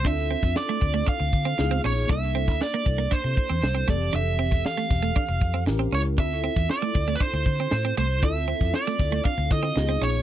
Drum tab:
HH |xxxx-xxxxxxx-xxx|xxxx-xxxxxxx-xxx|xxxx-xxxxxxx-xox|xxxx-xxxxxxx-xxx|
SD |-o-oo-------o---|-o-oo-------o---|---oooo-----o---|-o-oo-------o---|
BD |o--o--o-o-o-----|o--o--o-o-o---o-|---o--o-o-o-----|o--o--o-o-o-----|

HH |xxxx-xxxxxxx-xxx|
SD |---oooo-----o---|
BD |o--o--o-o-o-----|